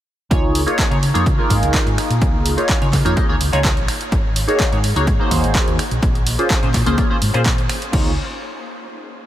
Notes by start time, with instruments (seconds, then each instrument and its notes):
0.30 fingered electric bass C#2, analog polysynth A#3 D#4 F4 G#4 C#5, kick, closed hi-hat
0.55 open hi-hat
0.66 analog polysynth A#3 D#4 F4 G#4 C#5, closed hi-hat
0.79 kick, clap, closed hi-hat
0.90 fingered electric bass C#3, analog polysynth A#3 D#4 F4 G#4 C#5, closed hi-hat
1.03 open hi-hat
1.14 fingered electric bass F2, analog polysynth A#3 D#4 F4 G#4 C#5, closed hi-hat
1.26 fingered electric bass C#3, kick, closed hi-hat
1.38 analog polysynth A#3 D#4 F4 G#4 A#4
1.50 fingered electric bass G#2, kick, open hi-hat
1.62 fingered electric bass C#2, closed hi-hat
1.74 kick, clap, closed hi-hat
1.86 fingered electric bass G#2, closed hi-hat
1.98 finger snap, open hi-hat
2.10 fingered electric bass A#2, closed hi-hat
2.22 fingered electric bass C#2, kick, closed hi-hat
2.46 open hi-hat
2.57 analog polysynth A#3 D#4 F4 G#4 C#5, closed hi-hat
2.69 kick, clap, closed hi-hat
2.81 fingered electric bass C#3, analog polysynth A#3 D#4 F4 G#4 C#5, closed hi-hat
2.93 kick, clap, open hi-hat
3.05 fingered electric bass F2, analog polysynth A#3 D#4 F4 G#4 C#5, closed hi-hat
3.16 analog polysynth A#3 D#4 G#4 D#5, kick, closed hi-hat
3.29 fingered electric bass C#2, analog polysynth A#3 D#4 F4 G#4 C#5
3.41 fingered electric bass C#2, open hi-hat
3.52 fingered electric bass C#2, analog polysynth A#3 D#4 F4 G#4 C#5, closed hi-hat
3.64 kick, clap, closed hi-hat
3.77 fingered electric bass A#1, closed hi-hat
3.88 finger snap, open hi-hat
4.01 closed hi-hat
4.12 fingered electric bass G#1, kick, closed hi-hat
4.36 open hi-hat
4.47 analog polysynth A#3 D#4 F#4 G#4 C#5, closed hi-hat
4.60 kick, clap, closed hi-hat
4.72 fingered electric bass G#2, analog polysynth A#3 D#4 F#4 G#4 C#5, closed hi-hat
4.84 open hi-hat
4.96 fingered electric bass C#2, analog polysynth A#3 D#4 F#4 G#4 C#5, closed hi-hat
5.07 fingered electric bass G#2, kick, closed hi-hat
5.19 analog polysynth A#3 D#4 F#4 G#4 C5
5.31 fingered electric bass D#2, kick, open hi-hat
5.43 fingered electric bass G#1, closed hi-hat
5.55 kick, clap, closed hi-hat
5.67 fingered electric bass D#2, closed hi-hat
5.79 finger snap, open hi-hat
5.91 fingered electric bass A#1, closed hi-hat
6.03 fingered electric bass A#1, kick, closed hi-hat
6.15 closed hi-hat
6.27 open hi-hat
6.39 analog polysynth A#3 C#4 F4 G#4 C5, closed hi-hat
6.50 kick, clap, closed hi-hat
6.62 fingered electric bass A#2, analog polysynth A#3 C#4 F4 G#4 C5, closed hi-hat
6.74 kick, clap, open hi-hat
6.86 fingered electric bass C#2, analog polysynth A#3 C#4 F4 G#4 C5, closed hi-hat
6.97 analog polysynth A#3 C#4 F4 G#4 C#5, kick, closed hi-hat
7.10 analog polysynth A#3 C#4 F4 G#4 C5
7.22 fingered electric bass G#2, open hi-hat
7.34 fingered electric bass A#2, analog polysynth A#3 C#4 F4 G#4 C5, closed hi-hat
7.46 kick, clap, closed hi-hat
7.58 closed hi-hat
7.69 finger snap, open hi-hat
7.82 closed hi-hat
7.92 fingered electric bass C#2, analog polysynth A#3 D#4 F4 G#4 C#5, kick, crash